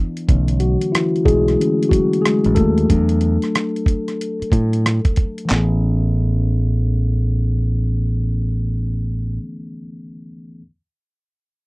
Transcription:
0.00 0.28 E3 soft
0.00 0.30 B3 soft
0.00 0.30 D4 soft
0.17 closed hi-hat soft
0.28 0.76 B1 medium
0.28 0.75 D3 soft
0.28 0.75 E3 soft
0.28 0.75 A3 soft
0.28 0.75 C#4 soft
0.28 kick medium
0.28 closed hi-hat medium
0.48 closed hi-hat soft
0.60 0.92 F#3 medium
0.60 0.91 F#4 medium
0.60 closed hi-hat medium
0.81 closed hi-hat soft
0.92 1.24 E3 medium
0.92 1.26 E4 medium
0.92 cross-stick medium
0.92 closed hi-hat medium
1.16 closed hi-hat soft
1.25 1.55 B1 medium
1.25 1.88 G#3 medium
1.25 1.93 G#4 medium
1.25 kick medium
1.25 closed hi-hat medium
1.48 cross-stick soft
1.48 closed hi-hat soft
1.59 1.89 D3 soft
1.59 1.88 E3 soft
1.59 1.89 A3 soft
1.59 1.89 C#4 soft
1.59 closed hi-hat medium
1.83 closed hi-hat soft
1.89 2.23 F#3 medium
1.89 2.24 F#4 medium
1.89 kick medium
1.89 closed hi-hat medium
2.13 closed hi-hat soft
2.22 2.55 G#3 medium
2.22 2.57 G#4 medium
2.22 cross-stick medium
2.26 closed hi-hat medium
2.44 2.56 A1 medium
2.44 closed hi-hat soft
2.55 2.86 D#2 medium
2.55 2.89 A3 medium
2.55 4.80 A4 medium
2.55 kick medium
2.55 closed hi-hat medium
2.78 closed hi-hat soft
2.89 3.37 E2 medium
2.89 3.83 F#3 soft
2.89 3.84 A3 soft
2.89 3.84 D4 soft
2.89 kick medium
2.89 closed hi-hat medium
3.09 closed hi-hat soft
3.21 closed hi-hat medium
3.42 cross-stick soft
3.42 closed hi-hat soft
3.55 cross-stick medium
3.55 closed hi-hat medium
3.76 closed hi-hat soft
3.86 kick medium
3.86 closed hi-hat soft
4.08 cross-stick soft
4.08 closed hi-hat soft
4.21 closed hi-hat medium
4.42 muted fingered electric bass stroke soft
4.42 closed hi-hat soft
4.52 4.99 A2 medium
4.52 kick medium
4.52 closed hi-hat medium
4.73 closed hi-hat soft
4.86 cross-stick medium
4.86 closed hi-hat medium
5.05 kick medium
5.05 closed hi-hat soft
5.16 kick medium
5.16 closed hi-hat medium
5.38 closed hi-hat soft
5.45 9.32 E3 medium
5.45 9.34 A3 medium
5.50 9.38 A1 medium
5.50 9.37 B3 medium
5.50 9.39 C#4 medium
5.50 snare medium
5.50 clap medium
5.56 9.42 G#4 medium

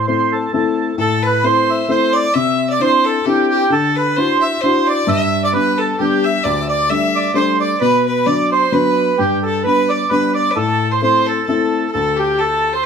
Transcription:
0.07 0.44 A3 soft
0.07 0.45 C4 soft
0.07 0.45 E4 soft
0.07 0.33 C5 medium
0.32 0.52 A4 medium
0.53 0.90 A3 soft
0.53 0.90 C4 soft
0.53 0.90 E4 medium
0.53 0.96 A4 medium
0.98 1.42 A2 medium
0.98 1.24 A4 medium
0.98 1.25 A4 medium
1.23 1.45 B4 medium
1.23 1.44 B4 medium
1.43 1.80 A3 soft
1.43 1.80 C4 soft
1.43 1.81 E4 soft
1.43 1.89 C5 medium
1.43 1.70 C5 loud
1.70 1.91 E5 medium
1.89 2.25 A3 medium
1.89 2.25 C4 soft
1.89 2.26 E4 medium
1.89 2.14 C5 medium
1.89 2.15 C5 medium
2.13 2.35 D5 medium
2.13 2.34 D5 medium
2.34 2.79 C3 medium
2.34 2.69 E5 medium
2.34 2.72 E5 medium
2.70 2.82 D5 medium
2.70 2.81 D5 medium
2.79 3.16 C4 soft
2.79 3.17 D4 soft
2.79 3.17 E4 soft
2.79 3.06 C5 medium
2.79 3.07 C5 medium
3.05 3.27 A4 medium
3.05 3.25 A4 medium
3.25 3.62 C4 soft
3.25 3.62 D4 soft
3.25 3.63 E4 medium
3.25 3.49 G4 medium
3.25 3.74 G4 medium
3.50 3.70 G4 medium
3.70 4.15 D3 medium
3.70 3.97 A4 medium
3.70 3.97 A4 loud
3.96 4.18 B4 medium
4.16 4.54 D4 soft
4.16 4.54 E4 soft
4.16 4.54 F#4 soft
4.16 4.40 C5 medium
4.16 4.43 C5 medium
4.41 4.62 E5 medium
4.61 5.00 D4 medium
4.61 5.00 E4 soft
4.61 5.00 F#4 medium
4.61 4.88 C5 medium
4.87 5.10 D5 medium
4.87 5.08 D5 medium
5.07 5.52 G2 medium
5.07 5.44 E5 loud
5.07 5.44 E5 medium
5.44 5.53 D5 medium
5.44 5.54 D5 medium
5.53 5.90 G3 soft
5.53 5.90 B3 soft
5.53 5.91 D4 soft
5.53 5.79 B4 medium
5.78 5.98 A4 medium
5.78 6.00 A4 medium
5.98 6.36 G3 medium
5.98 6.36 B3 soft
5.98 6.37 D4 medium
5.98 6.25 G4 medium
6.24 6.45 E5 medium
6.44 6.89 D2 medium
6.44 6.68 D5 medium
6.44 6.62 D5 loud
6.61 6.68 E5 medium
6.69 6.91 D5 medium
6.69 6.89 D5 medium
6.89 7.26 G3 soft
6.89 7.27 A3 soft
6.89 7.27 D4 soft
6.89 7.34 E5 medium
6.89 7.16 E5 medium
7.16 7.37 D5 medium
7.34 7.71 G3 medium
7.34 7.72 A3 soft
7.34 7.72 D4 medium
7.34 7.58 C5 medium
7.34 7.59 C5 medium
7.60 7.80 D5 medium
7.60 7.82 D5 medium
7.81 8.26 B2 medium
7.81 8.04 B4 medium
7.81 8.06 B4 loud
8.06 8.27 B4 medium
8.06 8.26 B4 medium
8.26 8.63 F#3 soft
8.26 8.64 B3 soft
8.26 8.64 D4 soft
8.26 8.51 D5 medium
8.26 8.50 D5 medium
8.52 8.74 C5 medium
8.72 9.09 F#3 medium
8.72 9.09 B3 soft
8.72 9.10 D4 medium
8.72 9.18 B4 medium
8.72 9.20 B4 medium
9.18 9.63 G2 medium
9.18 9.44 G4 medium
9.18 9.42 G4 medium
9.43 9.63 A4 medium
9.43 9.64 A4 medium
9.63 10.01 G3 soft
9.63 10.02 B3 soft
9.63 10.02 D4 soft
9.63 9.89 B4 medium
9.63 9.92 B4 medium
9.89 10.10 D5 medium
10.10 10.47 G3 soft
10.10 10.47 B3 soft
10.10 10.47 D4 medium
10.10 10.33 B4 medium
10.10 10.34 B4 medium
10.35 10.54 D5 medium
10.35 10.52 D5 medium
10.50 10.58 B4 medium
10.56 11.00 A2 medium
10.56 10.89 A4 medium
10.56 10.93 A4 medium
10.91 11.01 C5 medium
11.02 11.38 A3 soft
11.02 11.39 C4 soft
11.02 11.38 E4 soft
11.02 11.28 C5 medium
11.26 11.46 A4 medium
11.26 11.47 A4 medium
11.46 11.84 A3 medium
11.46 11.84 C4 soft
11.46 11.85 E4 medium
11.46 11.89 A4 medium
11.46 11.90 A4 medium
11.92 12.86 D2 medium
11.92 12.18 A4 medium
12.16 12.40 G4 medium
12.39 12.74 A4 medium
12.39 12.75 A4 medium
12.73 12.85 C5 medium

